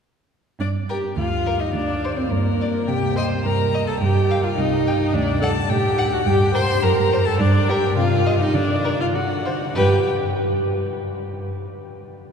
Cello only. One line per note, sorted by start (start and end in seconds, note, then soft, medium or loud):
0.59 1.05 G2 soft
1.17 1.62 D2 soft
1.73 2.19 D2 soft
2.31 2.76 G2 soft
2.88 3.33 C3 soft
3.45 3.90 G2 soft
4.01 4.46 G2 medium
4.58 5.02 C2 medium
5.14 5.59 D2 medium
5.69 6.14 A2 medium
6.26 6.71 G2 medium
6.82 7.27 F#2 medium
7.39 7.85 G2 medium
7.96 8.42 C3 medium
8.54 9.01 D3 medium
9.13 9.62 D3 medium
9.75 10.08 G2 medium